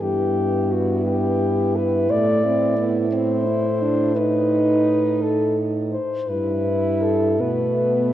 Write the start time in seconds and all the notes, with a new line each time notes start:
0.01 G2 B3 E4 G4
0.72 F#4
1.06 G4
1.76 B4
2.10 A2 A3 D5
2.45 C4
2.78 B3
3.12 C4 C5
3.47 E4
3.82 D4
4.16 D#4 B4
5.22 A4
5.92 C5
6.28 G2 E4 B4
7.02 A4
7.39 B2 A3 B3 B4